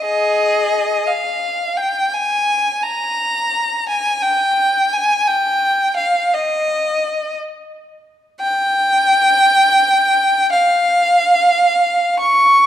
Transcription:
violin
0.05 G#4 D#5
1.07 F5
1.77 G5
2.14 G#5
2.83 A#5
3.89 G#5
4.22 G5
4.93 G#5
5.27 G5
5.96 F5
6.34 D#5
8.40 G5
10.53 F5
12.20 C#6

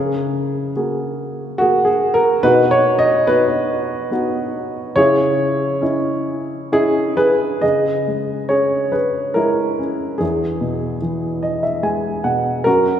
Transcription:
upright piano
Already playing: C#3 G#4
0.76 A#3 F#4 G#4
1.58 A#3 F#4 G#4
1.85 G#4
2.14 A#4
2.43 B2 D#4 F#4 B4
2.71 C#5
2.99 D#5
3.27 B3 D#4 F#4 B4
4.11 B3 D#4 F#4
4.96 C#3 E4 G#4 C#5
5.82 C#4 E4 D#5
6.72 C#4 E4 G#4 D#5
7.17 G#4 B4
7.61 C#3 G#4 D#5
8.08 G#3
8.49 C#4 G#4 C#5
8.92 G#4 B4
9.34 G#3 E4 A#4
9.79 C#4
10.18 E2 E4 G#4
10.61 B2
11.02 E3
11.43 D#5
11.63 E5
11.83 G#3 G#5
12.24 B2 F#5
12.64 F#2 F#4 A#4

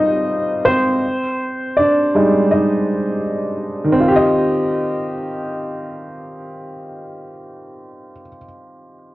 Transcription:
upright piano
Already playing: G3 C4 D#4 F4 C5 D#5
0.65 C4 C5
1.76 D4 D5
2.15 G3 G#3 D#4
2.51 D#4 D#5
3.84 D#3
3.92 C4
4.00 F4
4.08 G4
4.16 D#5

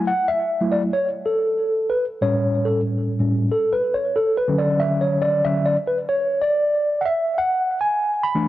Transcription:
tine electric piano
0.07 F#5
0.28 E5
0.61 F#3 A3 E4
0.72 D5
0.93 C#5
1.26 A4
1.90 B4
2.21 A2 G3 C#4 C#5
2.65 A4
3.19 A2 G3 C#4
3.52 A4
3.73 B4
3.94 C#5
4.16 A4
4.38 B4
4.48 D3 F#3 C#4
4.58 D5
4.80 E5
5.01 C#5
5.22 D5
5.45 D3 F#3 C#4 E5
5.66 D5
5.87 B4
6.09 C#5
6.42 D5
7.01 F#5
7.06 E5
7.38 F#5
7.81 G#5
8.23 B5
8.35 E3 A3 D4

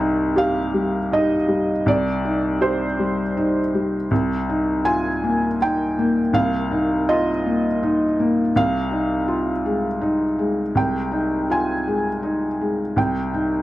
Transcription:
felt piano
Already playing: C2
0.00 D#4
0.36 G4 F5
0.74 G3
1.12 D#4 D#5
1.48 G3
1.86 C2 D5
2.25 D#4
2.61 G4 C5
2.99 G3
3.37 D#4
3.74 G3
4.11 C2
4.49 D#4
4.85 F4 G#5
5.24 A#3
5.61 D#4 G5
5.99 A#3
6.33 C2 F5
6.71 D#4
7.09 F4 D#5
7.46 A#3
7.83 D#4
8.20 A#3
8.56 C2 F5
8.91 D#4
9.28 F4
9.66 G#3
10.01 D#4
10.39 G#3
10.75 C2 G5
11.11 D#4
11.50 F4 G#5
11.87 G#3
12.23 D#4
12.61 G#3
12.96 C2 G5
13.34 D#4

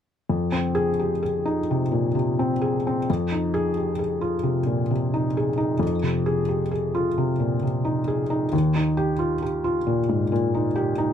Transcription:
felt piano
0.29 F2
0.52 C4
0.75 G#4
0.99 G4
1.23 G#4
1.46 D#4
1.71 C3
1.92 A#2
2.15 C3
2.39 C4
2.62 G#4
2.87 C4
3.10 F2
3.32 D#4
3.54 G#4
3.77 G4
3.99 G#4
4.21 F4
4.43 C3
4.66 A#2
4.91 C3
5.14 D#4
5.37 G#4
5.58 D#4
5.79 F2
6.03 C3
6.26 G#4
6.49 G4
6.71 G#4
6.95 F4
7.18 C3
7.40 A#2
7.63 C3
7.85 D#4
8.08 G#4
8.30 D#4
8.53 D#2
8.76 D#4
8.97 G4
9.19 F4
9.42 G4
9.64 F4
9.87 A#2
10.09 G#2
10.32 A#2
10.54 D#4
10.76 G4
10.98 D#4

